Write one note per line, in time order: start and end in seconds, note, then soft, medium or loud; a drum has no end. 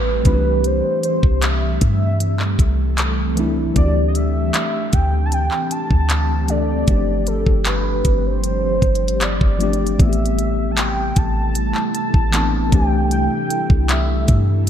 0.00 0.23 A1 loud
0.00 6.84 E3 medium
0.00 3.73 G3 medium
0.00 6.84 A3 medium
0.00 3.73 C4 medium
0.00 1.77 G4 medium
0.00 0.26 B4 medium
0.23 0.82 C2 loud
0.23 1.65 E3 medium
0.23 1.66 A3 medium
0.23 1.67 C4 medium
0.23 1.67 D4 medium
0.23 0.68 B4 medium
0.23 kick loud
0.23 closed hi-hat medium
0.28 0.33 F4 medium
0.34 1.71 G4 medium
0.64 1.04 C5 medium
0.64 closed hi-hat medium
1.03 1.45 C5 medium
1.03 closed hi-hat medium
1.23 1.79 C2 medium
1.23 kick medium
1.42 2.99 E5 loud
1.42 clap loud
1.42 closed hi-hat medium
1.81 2.56 G2 loud
1.81 3.74 A4 medium
1.81 kick medium
1.81 closed hi-hat medium
2.20 closed hi-hat medium
2.40 clap medium
2.59 3.72 C2 loud
2.59 kick medium
2.59 closed hi-hat medium
2.98 clap loud
2.98 closed hi-hat medium
3.35 3.72 E3 medium
3.35 3.72 A3 medium
3.35 3.73 C4 medium
3.35 3.73 D4 medium
3.35 closed hi-hat medium
3.40 3.74 E4 medium
3.74 4.51 D2 loud
3.74 5.16 E3 medium
3.74 5.17 A3 medium
3.74 6.84 C4 medium
3.74 5.17 C4 medium
3.74 9.95 D4 medium
3.74 5.18 D4 medium
3.74 9.95 G4 medium
3.74 4.06 D5 loud
3.74 kick loud
3.74 closed hi-hat medium
3.79 3.84 F#4 medium
3.86 5.22 G4 medium
4.08 4.16 D#5 medium
4.15 4.95 E5 loud
4.15 closed hi-hat medium
4.54 clap loud
4.54 closed hi-hat medium
4.93 5.49 D2 loud
4.93 5.25 G5 loud
4.93 kick medium
4.93 closed hi-hat medium
5.26 5.35 A5 medium
5.32 5.71 G5 loud
5.32 closed hi-hat medium
5.51 clap medium
5.71 6.51 A5 loud
5.71 closed hi-hat medium
5.91 6.84 D2 loud
5.91 kick medium
6.10 clap loud
6.10 closed hi-hat medium
6.47 6.83 E3 medium
6.47 6.84 A3 medium
6.47 6.85 C4 medium
6.47 6.85 D4 medium
6.47 7.29 D5 loud
6.47 closed hi-hat medium
6.52 6.86 A4 medium
6.86 7.44 G1 loud
6.86 8.28 F3 medium
6.86 9.97 F3 medium
6.86 9.96 G3 medium
6.86 8.29 A3 medium
6.86 6.95 B3 medium
6.86 9.96 C4 medium
6.86 8.30 D4 medium
6.86 kick loud
6.86 closed hi-hat medium
6.91 8.30 G4 medium
6.95 8.33 C4 medium
7.27 7.66 A4 medium
7.27 closed hi-hat medium
7.47 8.03 G1 loud
7.47 kick medium
7.65 8.18 B4 medium
7.65 clap loud
7.65 closed hi-hat medium
8.05 8.80 G1 loud
8.05 kick medium
8.05 closed hi-hat medium
8.18 8.27 B4 medium
8.26 9.22 C5 medium
8.44 closed hi-hat medium
8.82 9.39 G1 medium
8.82 kick medium
8.82 closed hi-hat soft
8.95 closed hi-hat medium
9.08 closed hi-hat medium
9.21 10.02 D5 loud
9.21 clap loud
9.21 closed hi-hat medium
9.41 9.97 G1 loud
9.41 kick medium
9.58 9.95 F3 medium
9.58 9.95 A3 medium
9.58 9.96 C4 medium
9.58 9.97 D4 medium
9.58 closed hi-hat medium
9.63 9.97 G4 medium
9.73 closed hi-hat soft
9.87 closed hi-hat medium
9.98 11.12 A1 loud
9.98 14.70 C3 medium
9.98 11.40 E3 medium
9.98 14.70 G3 medium
9.98 11.40 A3 medium
9.98 14.70 A3 medium
9.98 11.41 B3 medium
9.98 11.42 C4 medium
9.98 14.70 E4 medium
9.98 14.70 A4 medium
9.98 10.73 E5 loud
9.98 kick loud
9.98 closed hi-hat medium
10.02 10.08 F4 medium
10.09 11.45 G4 medium
10.09 closed hi-hat soft
10.26 closed hi-hat medium
10.39 closed hi-hat medium
10.71 10.80 A5 medium
10.77 11.19 G5 loud
10.77 clap loud
10.77 closed hi-hat medium
11.16 11.73 A1 loud
11.16 11.94 A5 loud
11.16 kick medium
11.16 closed hi-hat medium
11.55 closed hi-hat medium
11.75 clap medium
11.95 12.74 A5 loud
11.95 closed hi-hat medium
12.14 12.70 A1 loud
12.14 kick medium
12.32 12.69 E3 medium
12.32 12.70 A3 medium
12.32 12.73 B3 medium
12.32 12.71 C4 medium
12.32 clap loud
12.32 closed hi-hat medium
12.36 12.72 D4 medium
12.70 13.28 C2 medium
12.70 14.12 E3 medium
12.70 14.13 A3 medium
12.70 14.13 C4 medium
12.70 14.14 D4 medium
12.70 13.12 G5 loud
12.70 kick loud
12.70 closed hi-hat medium
12.75 14.14 G4 medium
13.11 13.86 G5 loud
13.11 closed hi-hat medium
13.50 closed hi-hat medium
13.70 14.26 C2 loud
13.70 kick medium
13.89 14.63 E5 medium
13.89 clap loud
13.89 closed hi-hat medium
14.28 14.70 G2 loud
14.28 kick medium
14.28 closed hi-hat medium